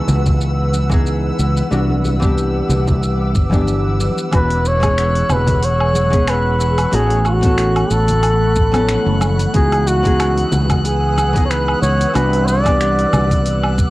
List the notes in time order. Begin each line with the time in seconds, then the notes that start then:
Already playing: E3 G#3 B3 D#4 G#4 B4 F#5 E6
0.08 C#2, low conga, shaker
0.26 kick, low conga, shaker
0.41 shaker
0.73 high conga, shaker
0.90 E3 G#3 B3 D#4 G#4, kick, shaker
1.06 shaker
1.39 C#2, shaker
1.57 shaker
1.71 C2 E3 G3 B3 D4 F#4 D6, shaker
1.90 high conga
2.04 high conga, shaker
2.20 E3 G3 B3 D4, kick, shaker
2.24 G4
2.38 shaker
2.69 C2, low conga, shaker
2.87 kick, low conga, shaker
3.03 shaker
3.35 G1, kick, shaker
3.50 E3 G3 B3 D4, kick, high conga, shaker
3.54 G4
3.68 shaker
4.00 high conga, shaker
4.18 shaker
4.31 E1 E3 G#3 B3 C#4 F#4 G#4 B4 F#5 C#6 E6 F#6, kick, open hi-hat, low woodblock, shaker
4.50 open hi-hat
4.65 C#5, shaker
4.80 E3 G#3 B3 C#4, kick, open hi-hat, low woodblock, shaker
4.84 G#4
4.98 finger snap, open hi-hat, shaker
5.15 open hi-hat
5.29 E1 B4, low conga, low woodblock, shaker
5.47 kick, open hi-hat, low conga, shaker
5.63 C#5, open hi-hat, shaker
5.81 low woodblock
5.94 high conga, shaker
6.10 E3 G#3 B3 C#4 G#4, kick, open hi-hat, shaker
6.28 B4, finger snap, open hi-hat, low woodblock, shaker
6.60 shaker
6.78 open hi-hat, low woodblock, shaker
6.91 A1 E3 A3 B3 C#4 F#4 G#4 F#5 B5, open hi-hat, shaker
7.10 open hi-hat
7.25 F#4, low woodblock, shaker
7.41 E3 A3 B3 C#4 A4, kick, open hi-hat, shaker
7.58 finger snap, open hi-hat, shaker
7.76 open hi-hat, low woodblock
7.91 A1 A4, shaker
8.08 open hi-hat, low conga, shaker
8.23 open hi-hat, low woodblock, shaker
8.56 kick, shaker
8.72 E3 A3 B3 C#4 A4, open hi-hat, high conga, low woodblock, shaker
8.89 finger snap, open hi-hat, shaker
9.06 F#1
9.21 high conga, low woodblock, shaker
9.39 open hi-hat, shaker
9.54 C#2 E3 G#3 B3 D#4 F#4 G#4 B4 D#6 E6, kick, open hi-hat, shaker
9.72 open hi-hat, low woodblock
9.87 F#4, shaker
10.03 E3 G#3 B3 D#4 G#4, kick, open hi-hat, shaker
10.20 finger snap, open hi-hat, low woodblock, shaker
10.37 open hi-hat
10.52 C#2, low conga, shaker
10.70 kick, open hi-hat, low conga, low woodblock, shaker
10.85 G#4, open hi-hat, shaker
11.17 high conga, low woodblock, shaker
11.33 E3 G#3 B3 D#4, kick, open hi-hat, shaker
11.37 G#4
11.45 C#5
11.50 B4, finger snap, open hi-hat, shaker
11.68 low woodblock
11.82 C#2 C#5, shaker
12.01 open hi-hat, shaker
12.14 C2 E3 G3 B3 D4 F#4 B4 D6, open hi-hat, low woodblock, shaker
12.33 open hi-hat
12.47 D5, shaker
12.64 E3 G3 B3 D4, kick, open hi-hat, low woodblock, shaker
12.68 G4
12.81 finger snap, open hi-hat, shaker
12.99 open hi-hat
13.13 C2, low conga, low woodblock, shaker
13.30 kick, open hi-hat, low conga, shaker
13.46 open hi-hat, shaker
13.63 low woodblock
13.78 kick, shaker